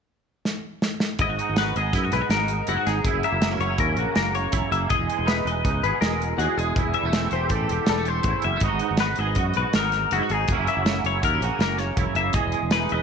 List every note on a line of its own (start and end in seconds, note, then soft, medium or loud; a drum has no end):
0.45 snare medium
0.82 snare medium
1.00 snare medium
1.19 1.27 G#1 medium
1.19 2.10 G#2 medium
1.19 1.29 E4 medium
1.19 1.58 D#5 medium
1.19 kick loud
1.19 closed hi-hat medium
1.29 1.37 G#1 medium
1.29 1.57 F#4 medium
1.39 2.32 D#4 medium
1.39 closed hi-hat medium
1.49 1.71 G#1 medium
1.56 3.04 B3 soft
1.56 1.77 F#4 soft
1.56 1.76 B4 medium
1.56 snare loud
1.56 closed hi-hat medium
1.76 1.91 G#1 medium
1.76 1.94 G#4 soft
1.76 2.13 D#5 medium
1.76 closed hi-hat medium
1.93 2.09 F#2 medium
1.93 2.03 E4 medium
1.93 kick medium
1.93 snare soft
1.93 closed hi-hat medium
2.03 2.12 F#4 medium
2.11 2.20 B1 medium
2.11 2.66 G#2 medium
2.11 2.21 E4 soft
2.11 2.30 B4 medium
2.11 snare soft
2.11 closed hi-hat medium
2.21 2.67 F#4 soft
2.29 2.60 G#1 medium
2.29 2.86 D#4 medium
2.29 2.68 A#4 medium
2.29 snare medium
2.29 closed hi-hat medium
2.48 closed hi-hat medium
2.67 2.76 F#1 medium
2.67 3.03 G#2 medium
2.67 2.76 E4 soft
2.67 2.87 F#4 medium
2.67 closed hi-hat medium
2.76 3.05 F#4 soft
2.87 3.02 G#1 medium
2.87 3.04 D#4 medium
2.87 3.24 G#4 medium
2.87 snare soft
2.87 closed hi-hat medium
3.05 3.13 F#1 medium
3.05 4.51 F#2 medium
3.05 3.60 E4 medium
3.05 kick loud
3.05 closed hi-hat medium
3.13 3.21 F#1 medium
3.23 4.15 A#3 medium
3.23 3.60 E5 medium
3.23 closed hi-hat soft
3.32 3.55 F#1 medium
3.42 4.89 F#3 medium
3.42 3.51 B3 soft
3.42 snare loud
3.42 closed hi-hat medium
3.51 3.79 C#4 soft
3.59 3.75 F#1 medium
3.59 3.98 E4 soft
3.59 3.80 C#5 medium
3.59 closed hi-hat soft
3.78 3.94 D#2 medium
3.78 4.89 C#4 medium
3.78 4.15 A#4 medium
3.78 kick medium
3.78 closed hi-hat medium
3.96 4.05 A#1 medium
3.96 4.89 C#3 soft
3.96 4.52 F#4 medium
3.96 closed hi-hat soft
4.15 4.47 F#1 medium
4.15 4.71 A#3 medium
4.15 4.35 A#4 medium
4.15 snare medium
4.15 closed hi-hat medium
4.35 4.72 C#5 medium
4.35 closed hi-hat medium
4.52 4.61 E1 medium
4.52 4.88 F#2 medium
4.52 4.89 E4 medium
4.52 kick loud
4.52 closed hi-hat medium
4.72 4.87 F#1 medium
4.72 4.89 A#3 medium
4.72 4.90 E5 medium
4.72 closed hi-hat medium
4.88 4.98 E1 loud
4.88 6.39 E2 medium
4.88 5.46 G#4 medium
4.88 5.28 D#5 medium
4.88 kick loud
4.88 closed hi-hat medium
4.99 5.07 E1 medium
5.07 6.02 G#3 medium
5.07 closed hi-hat medium
5.19 5.41 E1 medium
5.24 6.73 E3 medium
5.24 5.63 D#4 medium
5.24 5.47 B4 medium
5.24 snare medium
5.24 closed hi-hat medium
5.45 5.61 E1 medium
5.45 5.84 B4 medium
5.45 5.85 D#5 medium
5.45 closed hi-hat soft
5.64 5.80 C#2 medium
5.64 6.74 D#4 soft
5.64 kick loud
5.64 closed hi-hat medium
5.83 5.91 G#1 medium
5.83 6.76 B2 medium
5.83 6.39 G#4 soft
5.83 6.01 B4 medium
5.83 closed hi-hat medium
6.01 6.32 E1 medium
6.01 6.58 G#3 medium
6.01 6.39 A#4 medium
6.01 snare medium
6.01 closed hi-hat medium
6.22 closed hi-hat medium
6.38 6.46 D#2 medium
6.38 6.76 E2 medium
6.38 6.58 F#4 medium
6.38 6.75 G#4 medium
6.38 closed hi-hat medium
6.57 6.73 E1 medium
6.57 6.75 G#3 medium
6.57 6.95 G#4 medium
6.57 closed hi-hat medium
6.76 6.84 E1 medium
6.76 7.69 E2 medium
6.76 7.33 E4 medium
6.76 kick loud
6.76 closed hi-hat medium
6.85 6.93 E1 medium
6.94 7.05 G3 medium
6.94 7.32 E5 medium
6.94 closed hi-hat soft
7.03 7.26 E1 medium
7.03 7.89 A3 soft
7.13 8.61 E3 soft
7.13 7.53 C4 soft
7.13 snare loud
7.13 closed hi-hat medium
7.31 7.47 E1 medium
7.31 7.69 G4 medium
7.31 7.52 C5 medium
7.31 closed hi-hat soft
7.49 7.66 A1 medium
7.49 7.88 A4 medium
7.49 kick medium
7.49 closed hi-hat medium
7.54 8.62 C4 soft
7.69 7.78 E1 medium
7.69 8.26 E2 medium
7.69 8.26 G4 soft
7.69 closed hi-hat medium
7.86 8.19 E1 medium
7.86 7.98 G3 medium
7.86 8.08 A4 medium
7.86 snare medium
7.86 closed hi-hat medium
7.98 8.44 A3 soft
8.05 8.45 C5 medium
8.05 closed hi-hat medium
8.23 8.33 A1 medium
8.23 8.63 E2 medium
8.23 kick loud
8.23 closed hi-hat medium
8.28 8.64 E4 soft
8.42 8.60 F#1 medium
8.42 8.63 E5 medium
8.42 closed hi-hat medium
8.47 8.56 G3 soft
8.56 8.63 A3 soft
8.60 8.69 G#1 medium
8.60 9.56 G#2 medium
8.60 8.98 B3 soft
8.60 8.81 D#4 medium
8.60 9.00 D#5 medium
8.60 kick medium
8.60 closed hi-hat medium
8.65 9.00 F#4 medium
8.73 8.80 G#1 medium
8.79 9.75 D#4 medium
8.79 closed hi-hat medium
8.91 9.13 G#1 medium
8.97 10.46 B3 medium
8.97 9.20 F#4 medium
8.97 9.19 B4 medium
8.97 snare medium
8.97 closed hi-hat medium
9.15 9.34 G#1 medium
9.15 9.56 D#5 medium
9.15 closed hi-hat soft
9.20 9.38 G#4 soft
9.35 9.52 F#2 medium
9.35 9.59 F#4 medium
9.35 kick medium
9.35 closed hi-hat medium
9.54 9.64 B1 medium
9.54 9.75 B4 medium
9.54 closed hi-hat medium
9.58 10.13 G#2 medium
9.58 10.13 F#4 soft
9.73 10.05 G#1 medium
9.73 10.12 A#4 medium
9.73 snare medium
9.73 closed hi-hat medium
9.78 10.32 D#4 medium
9.92 snare soft
9.92 closed hi-hat soft
10.11 10.19 F#1 medium
10.11 10.48 G#2 medium
10.11 10.22 E4 medium
10.11 10.31 F#4 medium
10.11 closed hi-hat medium
10.22 10.50 F#4 soft
10.29 10.45 G#1 medium
10.29 10.68 G#4 medium
10.29 closed hi-hat soft
10.33 10.48 D#4 soft
10.48 10.57 F#1 medium
10.48 11.96 F#2 medium
10.48 10.84 F#3 soft
10.48 10.67 A#3 medium
10.48 kick loud
10.48 closed hi-hat medium
10.52 10.85 C#4 medium
10.52 11.05 E4 medium
10.58 10.66 F#1 medium
10.67 11.60 A#3 medium
10.67 11.05 E5 medium
10.67 closed hi-hat soft
10.77 10.99 F#1 medium
10.85 12.32 F#3 medium
10.85 11.23 C#4 medium
10.85 snare loud
10.85 closed hi-hat medium
11.04 11.19 F#1 medium
11.04 11.43 E4 soft
11.04 11.24 C#5 medium
11.04 closed hi-hat soft
11.23 11.38 D#2 medium
11.23 11.34 B3 soft
11.23 11.60 A#4 medium
11.23 kick medium
11.23 closed hi-hat medium
11.34 12.36 C#4 soft
11.41 11.49 A#1 medium
11.41 12.33 C#3 medium
11.41 11.98 F#4 soft
11.41 closed hi-hat medium
11.59 11.90 F#1 medium
11.59 12.16 A#3 medium
11.59 11.78 A#4 medium
11.59 snare medium
11.59 closed hi-hat medium
11.78 12.16 C#5 medium
11.78 snare soft
11.78 closed hi-hat medium
11.97 12.05 E1 medium
11.97 12.32 F#2 medium
11.97 12.35 E4 soft
11.97 kick loud
11.97 closed hi-hat medium
12.15 12.30 F#1 medium
12.15 12.33 A#3 soft
12.15 12.34 E5 medium
12.15 closed hi-hat medium
12.33 12.42 E1 medium
12.33 13.03 E2 medium
12.33 12.92 G#4 medium
12.33 12.72 D#5 medium
12.33 kick loud
12.33 closed hi-hat medium
12.45 12.52 E1 medium
12.52 13.03 G#3 medium
12.52 closed hi-hat medium
12.63 12.85 E1 medium
12.71 13.03 E3 medium
12.71 13.03 D#4 soft
12.71 12.92 B4 medium
12.71 snare loud
12.71 closed hi-hat medium
12.89 13.03 E1 medium
12.89 13.03 B4 medium
12.89 13.03 D#5 medium
12.89 closed hi-hat soft